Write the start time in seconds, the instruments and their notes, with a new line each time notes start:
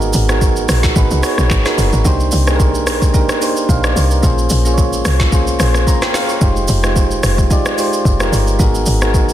Already playing: log drum bass G#1, synth keys B3 D#4 F#4 G#4 A#4
0.02 shaker
0.13 log drum bass G#1, open hi-hat, shaker
0.28 synth keys B3 D#4 F#4 G#4 A#4, cross-stick, shaker
0.41 kick, shaker
0.56 shaker
0.69 log drum bass A#1, cross-stick, open hi-hat, shaker
0.83 kick, snare, shaker
0.95 log drum bass G#1, synth keys B3 D#4 F#4 G#4 B4, kick, shaker
1.11 log drum bass C2, shaker
1.22 synth keys B3 D#4 F#4 G#4 C#5, cross-stick, open hi-hat, shaker
1.38 log drum bass A#1, cross-stick, shaker
1.50 log drum bass G#1, kick, clap, shaker
1.65 synth keys B3 D#4 F#4 G#4 A#4, cross-stick, snare, shaker
1.78 log drum bass F#1, open hi-hat, shaker
1.93 log drum bass G#1, shaker
2.04 log drum bass C2, synth keys A#3 D4 D#4 G4 C5, kick, shaker
2.20 shaker
2.32 log drum bass C2, open hi-hat, shaker
2.46 synth keys A#3 D4 D#4 G4 G#4, cross-stick, shaker
2.56 synth keys A#4, kick
2.60 shaker
2.75 shaker
2.87 log drum bass A#1, cross-stick, open hi-hat, shaker
3.02 kick, shaker
3.13 synth keys A#3 D4 D#4 G4 A#4, kick, shaker
3.29 cross-stick, shaker
3.41 synth keys A#3 D4 D#4 G4 C5, open hi-hat, shaker
3.57 shaker
3.69 log drum bass A#1, synth keys F5, kick, shaker
3.84 synth keys D5, cross-stick, shaker
3.96 log drum bass C2, synth keys C5, open hi-hat, shaker
4.11 synth keys A#4, shaker
4.22 log drum bass A#1, synth keys A#3 C#4 F4 G#4 C5, kick, shaker
4.38 shaker
4.50 log drum bass A#1, open hi-hat, shaker
4.65 synth keys A#3 C#4 F4 G#4 C5, shaker
4.74 synth keys C#5, kick
4.78 shaker
4.93 shaker
5.05 log drum bass C2, cross-stick, open hi-hat, shaker
5.20 kick, snare, shaker
5.31 synth keys A#3 C#4 F4 G#4 C5, kick, shaker
5.47 shaker
5.59 log drum bass A#1, synth keys A#3 C#4 F4 G#4 C5, cross-stick, open hi-hat, shaker
5.74 cross-stick, shaker
5.87 synth keys A#5, kick, shaker
6.02 synth keys G5, cross-stick, snare, shaker
6.14 synth keys F5, cross-stick, snare, open hi-hat, shaker
6.29 synth keys C#5, shaker
6.41 log drum bass F1, synth keys G#3 D#4 F4 G4 C5, kick, shaker
6.57 shaker
6.68 log drum bass F1, open hi-hat, shaker
6.83 synth keys G#3 D#4 F4 G4 C5, cross-stick, shaker
6.96 kick, shaker
7.11 shaker
7.23 log drum bass F1, cross-stick, open hi-hat, shaker
7.38 kick, shaker
7.50 synth keys G#3 D#4 F4 G4 D5, kick, shaker
7.66 cross-stick, shaker
7.77 synth keys G#3 D#4 F4 G4 C5, open hi-hat, shaker
7.93 shaker
8.05 log drum bass F1, kick, shaker
8.19 synth keys G#3 D#4 F4 G4 A#4, cross-stick, shaker
8.32 log drum bass G1, open hi-hat, shaker
8.47 shaker
8.59 log drum bass G#1, synth keys B3 D#4 F#4 G#4 A#4, kick, shaker
8.75 shaker
8.86 log drum bass G#1, open hi-hat, shaker
9.01 synth keys B3 D#4 F#4 G#4 A#4, cross-stick, shaker
9.14 kick, shaker
9.29 shaker